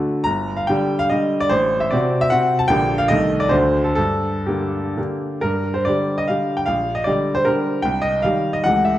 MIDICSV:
0, 0, Header, 1, 2, 480
1, 0, Start_track
1, 0, Key_signature, -2, "minor"
1, 0, Tempo, 431965
1, 293, Time_signature, 3, 2, 24, 8
1, 1250, Tempo, 398936
1, 4130, Tempo, 454890
1, 4610, Tempo, 501672
1, 5570, Tempo, 438917
1, 7010, Tempo, 389610
1, 9410, Tempo, 419874
1, 10260, End_track
2, 0, Start_track
2, 0, Title_t, "Grand piano"
2, 0, Program_c, 0, 0
2, 0, Note_on_c, 0, 50, 45
2, 0, Note_on_c, 0, 57, 42
2, 0, Note_on_c, 0, 66, 48
2, 246, Note_off_c, 0, 50, 0
2, 250, Note_off_c, 0, 57, 0
2, 250, Note_off_c, 0, 66, 0
2, 264, Note_on_c, 0, 82, 97
2, 288, Note_on_c, 0, 31, 62
2, 509, Control_c, 0, 64, 127
2, 628, Note_on_c, 0, 77, 76
2, 637, Note_off_c, 0, 82, 0
2, 747, Note_on_c, 0, 79, 75
2, 759, Note_off_c, 0, 31, 0
2, 764, Note_off_c, 0, 77, 0
2, 770, Note_on_c, 0, 50, 53
2, 776, Note_on_c, 0, 55, 60
2, 778, Note_on_c, 0, 67, 61
2, 793, Control_c, 0, 64, 0
2, 1100, Note_on_c, 0, 77, 99
2, 1121, Note_off_c, 0, 79, 0
2, 1203, Note_off_c, 0, 50, 0
2, 1206, Note_off_c, 0, 55, 0
2, 1207, Note_off_c, 0, 67, 0
2, 1217, Note_on_c, 0, 75, 78
2, 1233, Note_off_c, 0, 77, 0
2, 1238, Note_on_c, 0, 50, 47
2, 1238, Note_on_c, 0, 55, 45
2, 1246, Note_on_c, 0, 67, 47
2, 1586, Note_on_c, 0, 74, 92
2, 1600, Note_off_c, 0, 75, 0
2, 1681, Note_off_c, 0, 55, 0
2, 1682, Note_off_c, 0, 50, 0
2, 1685, Note_off_c, 0, 67, 0
2, 1695, Note_on_c, 0, 72, 97
2, 1710, Note_on_c, 0, 33, 70
2, 1721, Note_off_c, 0, 74, 0
2, 1942, Control_c, 0, 64, 127
2, 2066, Note_on_c, 0, 76, 79
2, 2077, Note_off_c, 0, 72, 0
2, 2189, Note_on_c, 0, 74, 76
2, 2196, Note_off_c, 0, 33, 0
2, 2208, Note_off_c, 0, 76, 0
2, 2210, Note_on_c, 0, 48, 57
2, 2220, Note_on_c, 0, 60, 55
2, 2220, Note_on_c, 0, 66, 57
2, 2240, Control_c, 0, 64, 0
2, 2558, Note_on_c, 0, 76, 101
2, 2574, Note_off_c, 0, 74, 0
2, 2652, Note_off_c, 0, 48, 0
2, 2657, Note_off_c, 0, 60, 0
2, 2657, Note_off_c, 0, 66, 0
2, 2664, Note_on_c, 0, 78, 95
2, 2688, Note_on_c, 0, 48, 58
2, 2690, Note_off_c, 0, 76, 0
2, 2693, Note_on_c, 0, 60, 54
2, 2696, Note_on_c, 0, 66, 56
2, 3011, Note_on_c, 0, 81, 101
2, 3020, Note_off_c, 0, 78, 0
2, 3097, Note_off_c, 0, 48, 0
2, 3100, Note_off_c, 0, 60, 0
2, 3101, Note_off_c, 0, 66, 0
2, 3119, Note_on_c, 0, 79, 108
2, 3136, Note_off_c, 0, 81, 0
2, 3139, Note_on_c, 0, 34, 68
2, 3146, Note_on_c, 0, 50, 53
2, 3151, Note_on_c, 0, 58, 57
2, 3157, Note_on_c, 0, 67, 52
2, 3346, Control_c, 0, 64, 127
2, 3483, Note_off_c, 0, 79, 0
2, 3483, Note_on_c, 0, 77, 98
2, 3574, Note_off_c, 0, 50, 0
2, 3577, Note_off_c, 0, 58, 0
2, 3580, Note_off_c, 0, 67, 0
2, 3604, Note_off_c, 0, 34, 0
2, 3606, Note_on_c, 0, 75, 100
2, 3617, Note_off_c, 0, 77, 0
2, 3627, Note_on_c, 0, 51, 57
2, 3631, Note_on_c, 0, 36, 63
2, 3634, Note_on_c, 0, 57, 53
2, 3638, Note_on_c, 0, 69, 48
2, 3639, Control_c, 0, 64, 0
2, 3869, Control_c, 0, 64, 127
2, 3986, Note_on_c, 0, 74, 89
2, 3995, Note_off_c, 0, 75, 0
2, 4084, Note_off_c, 0, 51, 0
2, 4087, Note_off_c, 0, 57, 0
2, 4089, Note_off_c, 0, 69, 0
2, 4098, Note_on_c, 0, 72, 82
2, 4118, Note_on_c, 0, 38, 72
2, 4119, Note_off_c, 0, 36, 0
2, 4122, Note_off_c, 0, 74, 0
2, 4123, Note_on_c, 0, 50, 49
2, 4131, Note_on_c, 0, 57, 47
2, 4133, Note_on_c, 0, 66, 44
2, 4141, Control_c, 0, 64, 0
2, 4335, Control_c, 0, 64, 127
2, 4470, Note_off_c, 0, 72, 0
2, 4470, Note_on_c, 0, 69, 74
2, 4565, Note_off_c, 0, 50, 0
2, 4569, Note_off_c, 0, 57, 0
2, 4569, Note_off_c, 0, 66, 0
2, 4573, Note_off_c, 0, 69, 0
2, 4589, Note_on_c, 0, 69, 93
2, 4590, Note_off_c, 0, 38, 0
2, 4614, Note_on_c, 0, 43, 60
2, 4626, Control_c, 0, 64, 0
2, 4813, Control_c, 0, 64, 127
2, 5079, Note_on_c, 0, 67, 62
2, 5082, Note_off_c, 0, 43, 0
2, 5085, Note_off_c, 0, 69, 0
2, 5096, Note_on_c, 0, 50, 44
2, 5101, Note_on_c, 0, 58, 44
2, 5533, Note_off_c, 0, 50, 0
2, 5535, Note_off_c, 0, 58, 0
2, 5561, Note_off_c, 0, 67, 0
2, 5566, Note_on_c, 0, 50, 43
2, 5568, Note_on_c, 0, 58, 37
2, 5576, Note_on_c, 0, 67, 41
2, 5586, Control_c, 0, 64, 0
2, 6025, Note_off_c, 0, 50, 0
2, 6026, Note_off_c, 0, 58, 0
2, 6030, Note_off_c, 0, 67, 0
2, 6047, Note_on_c, 0, 70, 80
2, 6069, Note_on_c, 0, 43, 52
2, 6262, Control_c, 0, 64, 127
2, 6404, Note_on_c, 0, 72, 64
2, 6414, Note_off_c, 0, 70, 0
2, 6523, Note_on_c, 0, 74, 76
2, 6533, Note_off_c, 0, 43, 0
2, 6537, Note_off_c, 0, 72, 0
2, 6543, Note_on_c, 0, 50, 40
2, 6556, Note_on_c, 0, 55, 41
2, 6557, Note_on_c, 0, 67, 48
2, 6561, Control_c, 0, 64, 0
2, 6883, Note_on_c, 0, 75, 80
2, 6888, Note_off_c, 0, 74, 0
2, 6965, Note_off_c, 0, 50, 0
2, 6971, Note_off_c, 0, 55, 0
2, 6971, Note_off_c, 0, 67, 0
2, 6991, Note_on_c, 0, 77, 78
2, 7002, Note_off_c, 0, 75, 0
2, 7013, Note_on_c, 0, 50, 39
2, 7015, Note_on_c, 0, 55, 39
2, 7024, Note_on_c, 0, 67, 48
2, 7348, Note_on_c, 0, 79, 74
2, 7360, Note_off_c, 0, 77, 0
2, 7442, Note_off_c, 0, 50, 0
2, 7443, Note_off_c, 0, 55, 0
2, 7448, Note_off_c, 0, 67, 0
2, 7457, Note_on_c, 0, 77, 88
2, 7477, Note_off_c, 0, 79, 0
2, 7479, Note_on_c, 0, 34, 53
2, 7714, Control_c, 0, 64, 127
2, 7817, Note_on_c, 0, 75, 75
2, 7829, Note_off_c, 0, 77, 0
2, 7931, Note_on_c, 0, 74, 76
2, 7950, Note_off_c, 0, 34, 0
2, 7955, Note_off_c, 0, 75, 0
2, 7960, Note_on_c, 0, 55, 46
2, 7961, Note_on_c, 0, 50, 48
2, 7967, Note_on_c, 0, 67, 49
2, 7984, Control_c, 0, 64, 0
2, 8307, Note_on_c, 0, 72, 88
2, 8327, Note_off_c, 0, 74, 0
2, 8414, Note_off_c, 0, 55, 0
2, 8415, Note_off_c, 0, 50, 0
2, 8417, Note_off_c, 0, 67, 0
2, 8431, Note_on_c, 0, 70, 77
2, 8449, Note_off_c, 0, 72, 0
2, 8455, Note_on_c, 0, 50, 46
2, 8456, Note_on_c, 0, 55, 42
2, 8467, Note_on_c, 0, 67, 49
2, 8879, Note_off_c, 0, 50, 0
2, 8879, Note_off_c, 0, 55, 0
2, 8885, Note_off_c, 0, 67, 0
2, 8896, Note_on_c, 0, 79, 89
2, 8914, Note_off_c, 0, 70, 0
2, 8927, Note_on_c, 0, 36, 62
2, 9132, Note_on_c, 0, 75, 88
2, 9136, Control_c, 0, 64, 127
2, 9144, Note_off_c, 0, 79, 0
2, 9387, Note_on_c, 0, 77, 84
2, 9394, Note_off_c, 0, 36, 0
2, 9396, Note_off_c, 0, 75, 0
2, 9409, Note_on_c, 0, 51, 42
2, 9420, Note_on_c, 0, 55, 45
2, 9423, Control_c, 0, 64, 0
2, 9426, Note_on_c, 0, 67, 47
2, 9741, Note_on_c, 0, 75, 77
2, 9761, Note_off_c, 0, 77, 0
2, 9844, Note_off_c, 0, 51, 0
2, 9850, Note_off_c, 0, 55, 0
2, 9853, Note_off_c, 0, 67, 0
2, 9861, Note_on_c, 0, 78, 95
2, 9876, Note_off_c, 0, 75, 0
2, 9879, Note_on_c, 0, 37, 59
2, 9879, Note_on_c, 0, 52, 41
2, 9888, Note_on_c, 0, 57, 42
2, 9893, Note_on_c, 0, 67, 39
2, 10102, Note_on_c, 0, 76, 69
2, 10107, Control_c, 0, 64, 127
2, 10115, Note_off_c, 0, 78, 0
2, 10260, Note_off_c, 0, 37, 0
2, 10260, Note_off_c, 0, 52, 0
2, 10260, Note_off_c, 0, 57, 0
2, 10260, Note_off_c, 0, 67, 0
2, 10260, Note_off_c, 0, 76, 0
2, 10260, End_track
0, 0, End_of_file